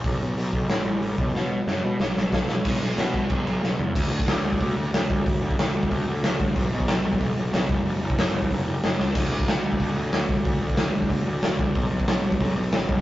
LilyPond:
<<
  \new Staff \with { instrumentName = "Picked electric bass" } { \clef bass \time 4/4 \key gis \phrygian \tempo 4 = 184 b,,8 b,,8 b,,8 b,,8 a,,8 a,,8 a,,8 b,,8 | b,4 fis,8 b,8 b,,8 b,,8 b,,8 b,,8 | b,,8 b,,8 b,4 b,,8 b,,8 b,,8 e,8 | d,8 d,8 d,8 d,8 d,8 d,8 d,8 d,8 |
d,8 d,8 d,8 d,8 d,8 d,8 d,8 d,8 | b,,8 b,,8 b,,8 b,,8 b,,8 b,,8 b,,8 fis,,8 | fis,,8 fis,,8 fis,,8 fis,,8 fis,,8 fis,,8 fis,,8 cis,8 | d,8 d,8 d,8 d,8 d,8 d,8 d,8 d,8 |
d,8 d,8 d,8 d,8 d,8 d,8 d,8 d,8 | b,,8 b,,8 b,,8 b,,8 b,,8 b,,8 gis,,8 fis,,8 | }
  \new DrumStaff \with { instrumentName = "Drums" } \drummode { \time 4/4 <hho bd>4 hho8 bd8 <hho sn>4 hho8 bd8 | sn4 sn4 sn8 sn8 <bd sn>8 sn8 | <cymc bd>8 cymc8 <cymc sn>8 <cymc bd>8 <cymc bd>8 cymc8 sn8 tomfh8 | <cymc bd>8. bd16 <hho sn>8. bd16 <hho bd>4 <hho sn>8 bd8 |
<hho bd>8. bd16 <hho sn>8. bd16 <hho bd>4 <hho sn>8 bd8 | <hho bd>8. bd16 <hho sn>8. bd16 <hho bd>4 <hho sn>8 bd8 | hho8. bd16 <hho sn>8. bd16 <hho bd>4 <hho sn>8 sn8 | <cymc bd>8. bd16 <hho sn>8. bd16 <hho bd>4 <hho sn>8 bd8 |
<hho bd>8. bd16 <hho sn>8. bd16 <hho bd>4 <hho sn>8 bd8 | <hho bd>8. bd16 <hho sn>8. bd16 <hho bd>4 <hho sn>8 bd8 | }
>>